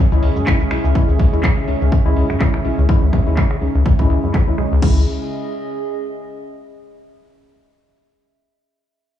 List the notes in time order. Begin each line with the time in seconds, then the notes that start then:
Already playing: C#3 G#3 C#4 G#4 E5
0.12 C#2 G#3 C#4 E4, closed hi-hat, cabasa
0.23 C#2, open hi-hat
0.36 F#2, closed hi-hat, cabasa
0.46 B1 G#3 C#4 E4, kick, clap, closed hi-hat, cabasa
0.60 C#2, closed hi-hat, cabasa
0.71 B1 G#3 C#4 E4, finger snap, open hi-hat
0.84 C#2, cabasa
0.95 C#2 G#3 C#4 E4, kick, closed hi-hat, cabasa
1.09 C#2, closed hi-hat, cabasa
1.19 C#2, kick, open hi-hat
1.33 D#2 G#3 C#4 E4, closed hi-hat, cabasa
1.43 B2, kick, clap, closed hi-hat, cabasa
1.57 C#3, closed hi-hat, cabasa
1.68 C#2 G#3 C#4 D#4, open hi-hat
1.81 C#2, closed hi-hat, cabasa
1.92 C#2, kick, closed hi-hat, cabasa
2.06 C#2 G#3 C#4 E4, closed hi-hat, cabasa
2.16 C#2, open hi-hat
2.30 F#2, finger snap, closed hi-hat, cabasa
2.40 B1 G#3 C#4 E4, kick, clap, closed hi-hat, cabasa
2.54 C#2, finger snap, closed hi-hat, cabasa
2.65 B1 G#3 C#4 E4, open hi-hat
2.78 C#2, closed hi-hat, cabasa
2.89 C#2 G#3 C#4 E4, kick, closed hi-hat, cabasa
3.02 C#2, closed hi-hat, cabasa
3.13 C#2, finger snap, kick, open hi-hat
3.26 D#2 G#3 C#4 E4, open hi-hat, cabasa
3.37 B2, kick, clap
3.51 C#3, finger snap, closed hi-hat, cabasa
3.61 C#2 G#3 C#4 D#4, open hi-hat
3.75 C#2, closed hi-hat, cabasa
3.86 C#2, kick, closed hi-hat
3.99 C#2 G#3 C#4 E4, kick
4.10 C#2, open hi-hat
4.23 F#2 G#3 C#4 E4, cabasa
4.34 B1, kick, clap
4.47 C#2 G#3 C#4 E4, closed hi-hat, cabasa
4.58 B1 G#3 C#4 G#4, finger snap, open hi-hat
4.72 C#2, cabasa
4.82 C#2 G#3 C#4 E4, kick, crash
4.90 G#4
4.98 D#5